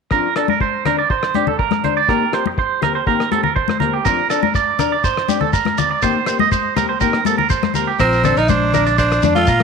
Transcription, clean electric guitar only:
0.12 A#4
0.37 A4
0.50 A#4
0.61 C5
0.86 A#4
0.99 D5
1.11 C5
1.35 G4
1.48 A4
1.59 A#4
1.84 C5
1.97 D5
2.09 A#4
2.34 C5
2.47 muted clean electric guitar stroke
2.59 C5
2.83 A#4
2.95 C5
3.07 A#4
3.32 A4
3.44 A#4
3.56 C5
3.80 A#4
3.93 G4
4.05 A#4
4.30 A4
4.43 A#4
4.55 D5
4.80 A#4
4.92 D5
5.04 C5
5.29 G4
5.41 A4
5.53 A#4
5.78 D5
5.91 D5
6.03 C5
6.27 C5
6.40 D#5
6.52 C5
6.77 A#4
6.89 C5
7.01 A#4
7.26 A4
7.38 A#4
7.50 C5
7.75 A#4
7.87 G4
8.00 A#4
8.25 A4
8.37 A#4
8.50 C5
8.75 A#4
8.86 D5
8.98 C5
9.23 D4
9.36 A4
9.48 A#4

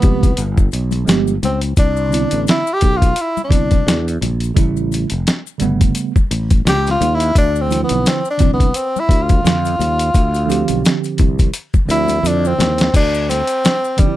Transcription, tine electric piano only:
Already playing: C3 G3 E4 F4
0.00 F3 G#3 B3 G4
1.05 F3 G#3 B3
1.09 G4
2.09 D3 B3 C4
2.13 E4
3.49 D3 B3 C4
3.53 E4
4.54 C#3 G3 A3 E4
5.58 C#3 G3 A3
5.62 B3
7.68 D3 E3 C4 E4
7.76 F3
8.38 D3 F3 C4 D4
9.42 D3 F3 C4 F4
10.46 D3 F3 C4 G4
11.86 D3 F3 C4 E4
13.97 D3 F3 C4 D4
14.07 E4

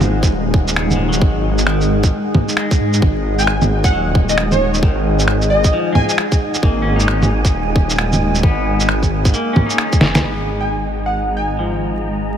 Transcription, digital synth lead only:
3.39 G#5
3.84 F#5
4.29 D#5
4.52 C#5
5.50 D#5
5.95 G#5
6.09 G#5
10.61 G#5
11.06 F#5
11.37 G#5

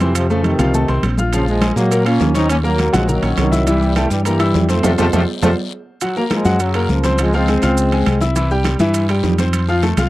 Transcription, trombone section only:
0.01 C3 E3
0.15 C3 F3
0.30 C#3 F3
0.44 C3 D#3
1.33 C#3 F3
1.48 F3 G#3
1.76 F#3 A#3
2.05 A#3 C#4
2.35 C4 D#4
2.50 A#3 C#4
2.65 F#3 A#3
2.94 F3 G#3
3.10 D#3 F#3
3.39 D#3 F#3
3.68 E3 G3
3.97 E3 A3
4.10 E3 G3
4.25 E3 G3
4.70 F3 A3
4.84 C3 F3 A3
4.99 C3 F3 A3
5.14 C3 F3 A3
5.42 C3 F3 A3
6.18 F#3 A#3
6.32 F3 G#3
6.62 C#3 F#3
6.91 C#3 F3
7.21 F3 G#3
7.34 G#3 C4

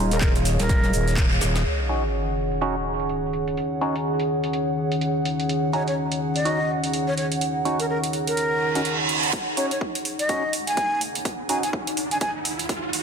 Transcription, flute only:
0.12 A#4
0.22 A#4
0.60 A#4
5.73 C#5
5.87 C#5
6.35 D#5
7.08 C#5
7.17 C#5
7.80 A#4
7.89 A#4
8.28 A#4
9.57 C#5
9.71 C#5
10.19 D#5
10.67 G#5
11.49 G#5
11.63 G#5
12.11 G#5
12.21 G#5

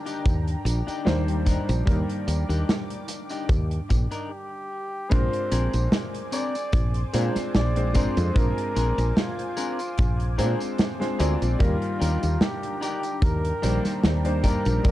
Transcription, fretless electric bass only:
0.26 D#2
0.65 A#1
0.88 muted fretless electric bass stroke
1.06 D#2
1.69 A#1
1.87 D#2
2.28 D#2
2.49 D#2
3.49 D#2
3.90 A#1
5.12 A#1
5.52 A#1
5.74 A#1
6.73 A#1
7.14 A#2
7.36 muted fretless electric bass stroke
7.55 A#1
8.17 F2
8.36 A#1
8.76 A#1
8.98 A#1
9.99 A#1
10.39 A#2
11.20 D2
11.42 A#1
11.60 D#2
12.01 D#2
12.23 D#2
13.22 D#2
13.64 A#1
13.85 muted fretless electric bass stroke
14.04 D#2
14.66 A#1
14.85 D#2

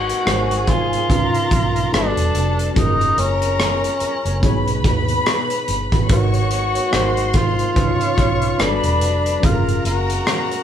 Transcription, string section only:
Already playing: F#4 F#5
0.27 G#4 G#5
1.09 A#4 A#5
1.93 A4 A5
2.76 A#4 A#5
4.44 B4 B5
6.10 C#5 C#6
6.93 C5 C6
7.77 C#5 C#6
8.60 B4 B5
9.43 A#4 A#5

